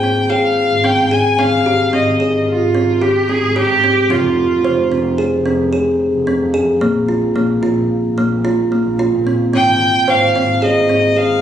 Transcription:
Already playing: G#1 G5
0.03 C4
0.30 G#4 F5
0.72 G#1
0.84 C4 G5
0.99 G#2
1.11 G#4 G#5
1.39 G#1 C4 F5
1.53 G#1
1.66 G4
1.93 G#1 C4 D#5
2.20 G#1 G#4
2.47 F4
2.61 G#1
2.75 C4
3.02 G4
3.29 C4 G#4
3.42 G#1
3.56 G4
3.69 G#2
3.84 C4
4.10 F1 C4 F4
4.24 F1
4.65 F1 C5
4.92 F1 C4
5.18 G#4
5.32 F1
5.46 C4
5.73 G#4
6.14 F1
6.27 C4
6.41 F2
6.54 G#4
6.81 A#1 A#3
6.96 A#1
7.08 F4
7.36 A#1 A#3
7.63 A#1 F4
8.05 A#1
8.18 A#3
8.45 F4
8.72 A#3
8.86 A#1
8.99 F4
9.14 A#2
9.27 C4
9.53 G#1 C4 G5
9.67 G#1
10.08 G#1 C5 F5
10.36 G#1 C4
10.62 G#4 D#5
10.77 G#1
10.89 C4
11.16 G#4 F5

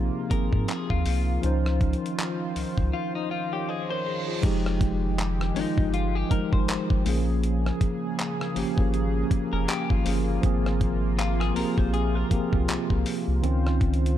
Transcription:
Already playing: A#1 C3 F3 A#3 C4 D#4 F4 G#4
0.29 G#1 F3 A#3 C4 A#4, kick, closed hi-hat
0.33 G#4
0.53 G#2, kick
0.68 G#4, clap, closed hi-hat
0.90 D#2 F4, kick
1.06 C2, open hi-hat
1.42 C#2 D#3 F3 C#4 D#4 C5, closed hi-hat
1.46 C5
1.66 cross-stick
1.81 kick, closed hi-hat
1.93 closed hi-hat
2.06 closed hi-hat
2.19 clap, closed hi-hat
2.56 C#2, open hi-hat
2.78 C#2, kick
2.93 F4, reverse cymbal
3.15 D#4
3.31 F4
3.53 G4 C#5 F5
3.69 G#4 C5 D#5
3.90 A#4 C5 C#5
4.06 G#4 C5
4.28 F4 G#4
4.41 F1 D#3 F3 G#3 D#4 G4, kick, closed hi-hat, crash
4.45 G4
4.66 cross-stick
4.81 kick, closed hi-hat
5.18 clap, closed hi-hat
5.41 cross-stick
5.54 G1 F3 G#3 D#4, open hi-hat
5.58 F4
5.78 G1, kick
5.94 F4, closed hi-hat
6.15 G4
6.29 G#1 F3 G#3 D#4 A#4, kick, closed hi-hat
6.33 A#4
6.53 G#1 C5, kick
6.68 G#1, clap, closed hi-hat
6.90 G#1, kick
7.04 A#1 C#3 F3 A#3 C#4 G#4, open hi-hat
7.08 G#4
7.43 closed hi-hat
7.66 cross-stick
7.81 kick, closed hi-hat
8.19 clap, closed hi-hat
8.41 cross-stick
8.54 G#1 F3 A#3 C#4, open hi-hat
8.58 G4
8.76 G#1 F3 A#3 C#4, kick
8.80 G#4
8.94 closed hi-hat
9.31 F1, kick, closed hi-hat
9.53 F1 A#4
9.68 G4, clap, closed hi-hat
9.90 G#1 F4, kick
10.04 G1 F3 A#3 C#4, open hi-hat
10.08 G#4
10.42 G#1 C3 F3 A#3 C4 F4, kick, closed hi-hat
10.46 G#4
10.66 cross-stick
10.81 kick, closed hi-hat
11.18 F4, clap, closed hi-hat
11.40 G#4, cross-stick
11.54 A#1 F3 A#3 C4 A#4, open hi-hat
11.59 G4
11.65 G#4
11.78 A#1 C5, kick
11.94 G#4, closed hi-hat
12.15 A#4
12.29 C2 F3 A#3 C4, kick, closed hi-hat
12.33 G4
12.40 G#4
12.53 C2, kick
12.68 C2, clap, closed hi-hat
12.90 C2, kick
13.06 open hi-hat
13.28 C2
13.42 C#2 D#3 C4 C#4 F4 C5, closed hi-hat
13.46 F4
13.67 cross-stick
13.81 kick, closed hi-hat
13.94 closed hi-hat
14.06 closed hi-hat

